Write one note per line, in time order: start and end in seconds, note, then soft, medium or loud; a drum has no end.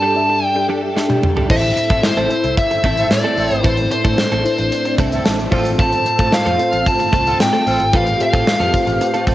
0.00 0.12 G2 medium
0.00 1.48 G3 medium
0.00 0.14 G3 medium
0.00 0.15 D4 medium
0.00 1.48 D4 medium
0.00 0.15 D4 medium
0.00 0.15 G4 medium
0.00 0.16 A4 medium
0.00 1.48 A4 medium
0.00 0.16 A4 medium
0.00 0.56 G5 medium
0.00 0.46 A5 loud
0.15 0.44 D4 medium
0.15 0.44 G4 medium
0.15 0.45 A4 medium
0.15 0.45 E5 medium
0.15 muted clean electric guitar stroke soft
0.29 muted clean electric guitar stroke medium
0.46 0.66 G5 loud
0.55 0.94 D4 medium
0.55 0.94 G4 medium
0.55 0.94 A4 medium
0.55 0.94 G5 loud
0.55 muted clean electric guitar stroke soft
0.69 0.88 G3 medium
0.69 0.82 D4 medium
0.69 0.82 G4 medium
0.69 0.81 A4 medium
0.83 muted clean electric guitar stroke soft
0.96 1.15 G3 medium
0.96 1.10 D4 medium
0.96 1.09 G4 medium
0.96 1.09 A4 medium
0.96 snare medium
1.08 1.38 D4 medium
1.08 1.38 G4 medium
1.08 1.38 A4 medium
1.08 1.38 G5 loud
1.08 high tom medium
1.23 muted clean electric guitar stroke soft
1.23 mid tom medium
1.36 1.49 G3 medium
1.36 1.50 D4 medium
1.36 1.50 G4 medium
1.36 1.50 A4 medium
1.36 floor tom medium
1.49 1.70 A1 loud
1.49 2.26 A2 medium
1.49 1.69 A3 medium
1.49 9.35 A3 medium
1.49 1.63 C4 medium
1.49 9.35 C4 medium
1.49 1.88 E4 medium
1.49 1.63 E4 medium
1.49 3.63 E4 medium
1.49 1.88 A4 medium
1.49 1.63 A4 medium
1.49 1.88 C5 medium
1.49 2.06 E5 loud
1.49 kick loud
1.49 crash loud
1.63 muted clean electric guitar stroke medium
1.63 closed hi-hat medium
1.77 muted clean electric guitar stroke medium
1.77 closed hi-hat medium
1.90 2.00 A2 loud
1.90 2.03 A3 medium
1.90 2.03 C4 medium
1.90 2.03 E4 medium
1.90 2.04 A4 medium
1.90 kick loud
1.90 closed hi-hat medium
2.02 2.22 E4 medium
2.02 2.22 A4 medium
2.02 2.23 C5 medium
2.02 2.54 C5 medium
2.02 muted clean electric guitar stroke soft
2.02 snare loud
2.02 tambourine medium
2.17 2.27 A1 medium
2.17 2.30 A3 medium
2.17 2.30 C4 medium
2.17 2.30 E4 medium
2.17 2.31 A4 medium
2.17 closed hi-hat soft
2.29 3.06 E4 medium
2.29 3.06 A4 medium
2.29 3.06 C5 medium
2.29 muted clean electric guitar stroke soft
2.29 closed hi-hat medium
2.44 2.54 C2 medium
2.44 muted clean electric guitar stroke soft
2.44 closed hi-hat medium
2.57 3.07 E5 loud
2.57 kick loud
2.57 closed hi-hat medium
2.71 muted clean electric guitar stroke soft
2.71 closed hi-hat medium
2.84 3.04 A1 medium
2.84 3.03 A3 loud
2.84 2.97 C4 loud
2.84 2.97 E4 loud
2.84 2.96 A4 loud
2.84 kick medium
2.84 closed hi-hat medium
2.97 3.09 C4 medium
2.97 3.09 E4 medium
2.97 3.09 A4 loud
2.97 muted clean electric guitar stroke soft
2.97 closed hi-hat medium
3.11 3.21 A2 loud
3.11 3.55 D5 medium
3.11 muted clean electric guitar stroke soft
3.11 snare loud
3.11 tambourine medium
3.24 3.36 A3 medium
3.24 3.37 C4 medium
3.24 3.37 E4 medium
3.24 3.37 A4 medium
3.24 closed hi-hat soft
3.37 3.48 A1 medium
3.37 3.52 A3 medium
3.37 3.72 C4 loud
3.37 3.51 C4 medium
3.37 3.72 E4 loud
3.37 3.50 E4 medium
3.37 3.72 A4 loud
3.37 3.50 A4 medium
3.37 open hi-hat medium
3.51 3.61 G#1 medium
3.51 closed hi-hat medium
3.55 3.64 C5 medium
3.63 3.85 A1 loud
3.63 4.41 A2 medium
3.63 3.83 A3 medium
3.63 3.77 C4 medium
3.63 5.50 D4 medium
3.63 3.83 E4 medium
3.63 3.77 E4 medium
3.63 3.84 A4 medium
3.63 3.76 A4 loud
3.63 3.84 B4 medium
3.63 3.90 C5 medium
3.63 kick loud
3.63 closed hi-hat loud
3.77 muted clean electric guitar stroke soft
3.77 closed hi-hat medium
3.90 4.29 E4 medium
3.90 4.29 A4 medium
3.90 4.95 C5 medium
3.90 4.30 C5 medium
3.90 muted clean electric guitar stroke soft
3.90 closed hi-hat medium
4.04 4.15 A2 medium
4.04 4.17 A3 medium
4.04 4.17 C4 medium
4.04 4.18 E4 medium
4.04 4.18 A4 medium
4.04 kick loud
4.04 closed hi-hat medium
4.18 snare loud
4.18 tambourine medium
4.32 4.42 A1 loud
4.32 4.44 A3 medium
4.32 4.44 C4 medium
4.32 4.45 E4 medium
4.32 4.45 A4 medium
4.32 closed hi-hat soft
4.44 5.21 E4 medium
4.44 5.21 A4 medium
4.44 5.21 C5 medium
4.44 muted clean electric guitar stroke soft
4.44 closed hi-hat medium
4.58 4.69 A1 medium
4.58 muted clean electric guitar stroke soft
4.58 closed hi-hat medium
4.72 closed hi-hat medium
4.85 muted clean electric guitar stroke soft
4.85 closed hi-hat medium
4.98 5.19 C2 medium
4.98 5.18 A3 medium
4.98 5.12 C4 medium
4.98 5.11 E4 medium
4.98 5.11 A4 medium
4.98 5.23 E5 medium
4.98 kick loud
4.98 closed hi-hat medium
5.12 5.24 C4 medium
5.12 5.24 E4 medium
5.12 5.24 A4 medium
5.12 muted clean electric guitar stroke soft
5.12 closed hi-hat medium
5.25 5.46 A1 medium
5.25 5.75 A5 medium
5.25 muted clean electric guitar stroke soft
5.25 snare loud
5.25 tambourine medium
5.38 muted clean electric guitar stroke soft
5.38 closed hi-hat soft
5.51 5.92 A1 medium
5.51 6.28 A2 medium
5.51 5.71 A3 medium
5.51 5.65 C4 medium
5.51 5.69 C4 loud
5.51 6.16 F4 medium
5.51 5.69 F4 loud
5.51 5.64 F4 medium
5.51 7.65 F4 medium
5.51 6.16 A4 medium
5.51 5.69 A4 loud
5.51 5.64 A4 medium
5.51 6.17 C5 loud
5.51 kick medium
5.51 open hi-hat medium
5.65 muted clean electric guitar stroke soft
5.65 closed hi-hat medium
5.78 5.98 A3 medium
5.78 5.92 C4 medium
5.78 5.92 F4 medium
5.78 5.91 A4 medium
5.78 6.35 A5 loud
5.78 kick loud
5.78 closed hi-hat loud
5.92 muted clean electric guitar stroke medium
5.92 closed hi-hat medium
6.06 muted clean electric guitar stroke soft
6.06 closed hi-hat medium
6.19 6.29 A2 loud
6.19 6.31 A3 medium
6.19 6.32 C4 medium
6.19 6.32 F4 medium
6.19 6.32 A4 medium
6.19 kick loud
6.19 closed hi-hat medium
6.32 6.51 F4 medium
6.32 6.51 A4 medium
6.32 6.52 C5 medium
6.32 6.88 F5 medium
6.32 snare loud
6.32 tambourine medium
6.46 6.56 F2 medium
6.46 6.58 A3 medium
6.46 6.59 C4 medium
6.46 6.59 F4 medium
6.46 6.59 A4 medium
6.46 closed hi-hat medium
6.58 7.35 F4 medium
6.58 7.35 A4 medium
6.58 7.36 C5 medium
6.58 muted clean electric guitar stroke soft
6.58 closed hi-hat medium
6.72 6.83 A1 medium
6.72 muted clean electric guitar stroke soft
6.72 closed hi-hat medium
6.86 7.37 A5 loud
6.86 kick loud
6.86 closed hi-hat medium
6.99 muted clean electric guitar stroke soft
6.99 closed hi-hat medium
7.12 7.33 C2 medium
7.12 7.32 A3 medium
7.12 7.26 C4 medium
7.12 7.25 F4 medium
7.12 7.25 A4 loud
7.12 kick medium
7.12 closed hi-hat medium
7.26 7.38 C4 medium
7.26 7.38 F4 medium
7.26 7.38 A4 loud
7.26 muted clean electric guitar stroke soft
7.26 closed hi-hat medium
7.39 7.50 A2 loud
7.39 7.96 G5 medium
7.39 muted clean electric guitar stroke medium
7.39 snare loud
7.39 tambourine medium
7.53 7.65 A3 medium
7.53 7.66 C4 medium
7.53 7.66 F4 medium
7.53 7.67 A4 medium
7.53 closed hi-hat medium
7.66 7.77 A1 medium
7.66 8.43 A2 medium
7.66 7.81 A3 medium
7.66 7.84 C4 loud
7.66 7.80 C4 medium
7.66 7.84 F4 loud
7.66 7.79 F4 medium
7.66 9.35 G4 medium
7.66 7.84 A4 loud
7.66 7.79 A4 medium
7.66 open hi-hat medium
7.80 7.90 G#1 medium
7.80 muted clean electric guitar stroke medium
7.80 closed hi-hat medium
7.92 8.13 A1 loud
7.92 8.12 A3 medium
7.92 8.06 C4 medium
7.92 8.12 F4 medium
7.92 8.06 F4 medium
7.92 8.12 A4 medium
7.92 8.05 A4 loud
7.92 8.12 B4 medium
7.92 8.19 F5 medium
7.92 kick loud
7.92 closed hi-hat medium
8.06 muted clean electric guitar stroke soft
8.06 closed hi-hat medium
8.19 8.58 F4 medium
8.19 8.58 A4 medium
8.19 8.58 C5 medium
8.19 9.24 F5 medium
8.19 muted clean electric guitar stroke medium
8.19 closed hi-hat medium
8.33 8.43 A2 loud
8.33 8.46 A3 medium
8.33 8.46 C4 medium
8.33 8.46 F4 medium
8.33 8.47 A4 medium
8.33 kick loud
8.33 closed hi-hat medium
8.47 muted clean electric guitar stroke soft
8.47 snare loud
8.47 tambourine medium
8.60 8.70 F2 loud
8.60 8.72 A3 medium
8.60 8.73 C4 medium
8.60 8.73 F4 medium
8.60 8.73 A4 medium
8.60 closed hi-hat soft
8.73 9.35 F4 medium
8.73 9.35 A4 medium
8.73 9.35 C5 medium
8.73 kick medium
8.73 closed hi-hat medium
8.87 8.97 A1 medium
8.87 muted clean electric guitar stroke soft
8.87 closed hi-hat medium
9.00 muted clean electric guitar stroke medium
9.00 closed hi-hat medium
9.14 9.25 A3 medium
9.14 9.26 C4 medium
9.14 9.27 F4 medium
9.14 9.27 A4 medium
9.14 closed hi-hat medium
9.27 9.35 A1 medium
9.27 9.35 A3 medium
9.27 9.35 C4 medium
9.27 9.35 F4 medium
9.27 9.35 A4 medium
9.27 kick loud
9.27 closed hi-hat medium